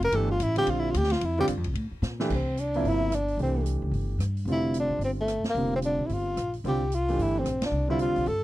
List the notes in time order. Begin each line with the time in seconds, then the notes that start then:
Already playing: F1
0.02 A#4, ride
0.12 G1 E3 A3 D4 G4 A4, ride
0.31 F4
0.40 A1 E4, hi-hat pedal, ride
0.56 D3 G3 C4 F4 G4, ride
0.66 A#1 F4, ride
0.79 E4
0.91 D2 F4, hi-hat pedal, ride
0.98 G4
1.04 snare
1.10 F4, snare, ride
1.21 F2 E4, ride
1.39 D3 G3 C4 F4 G4
1.48 G2, hi-hat pedal, ride
1.57 F2
1.64 C2, ride
1.74 A2, ride
1.92 muted upright bass stroke
2.02 A#2, snare, hi-hat pedal
2.20 E3 A3 D4 G4, snare
2.30 C2, kick, crash
2.34 C4
2.57 D4, closed hi-hat
2.74 C3 F3 A#3 E4, open hi-hat
2.84 G1, open hi-hat
2.88 E4
3.12 D4, cross-stick, closed hi-hat
3.28 open hi-hat
3.37 C2 E3 A3 D4 G4, open hi-hat
3.43 C4
3.66 closed hi-hat
3.82 C#2
3.91 G1, open hi-hat
4.19 G2, cross-stick, closed hi-hat
4.37 open hi-hat
4.45 F1 D3 G3 C4 F4, open hi-hat
4.52 E4
4.74 closed hi-hat
4.80 D4
4.89 B1
4.99 G1, open hi-hat
5.05 C4
5.21 A3
5.28 cross-stick, closed hi-hat
5.43 muted upright bass stroke, snare, open hi-hat
5.50 A#3
5.55 F1 D3 G3 C4 F4, open hi-hat
5.76 C4
5.82 D4, closed hi-hat
5.99 B1
6.07 G1 E4, open hi-hat
6.13 F4
6.37 A#1, cross-stick, closed hi-hat
6.53 open hi-hat
6.64 C2 D3 G3 C4 F4 G4, open hi-hat
6.92 F4, closed hi-hat
7.08 E3 A3 D4 G4, open hi-hat
7.17 G1, open hi-hat
7.22 E4
7.39 C4
7.44 A#1, cross-stick, closed hi-hat
7.62 D4, snare, ride
7.71 C2
7.88 D3 G3 C4 E4 F4
7.99 F4, closed hi-hat
8.08 D2
8.16 B1, open hi-hat
8.26 G2 A4, open hi-hat